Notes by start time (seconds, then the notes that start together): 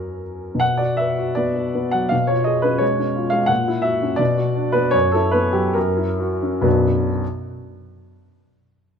Already playing: F#2 F#3 C#4 F#4 A#4
0.55 B2
0.60 F#5
0.77 F#4 D5
0.97 B4 E5
1.18 F#4
1.35 B3 D5
1.56 F#4
1.75 B3
1.91 F#3 F#5
2.09 B2 F5
2.27 F4 C#5
2.44 G#4 D#5
2.62 C#4 B4
2.78 G#3 C#5
2.99 C#4
3.15 F4
3.30 G#3 F5
3.46 A#2 F#5
3.68 E4
3.82 F#4 E5
4.02 C#4
4.16 B2 D5
4.37 F#4
4.55 D4
4.72 B3 B4
4.91 F#2 C#5
5.12 E4 A4
5.31 B3 B4
5.53 F#3 G4
5.73 F#2 A#4
5.97 E4
6.19 F#4
6.43 C#4
6.61 B1 F#2 F#3 B3 D4 F#4 B4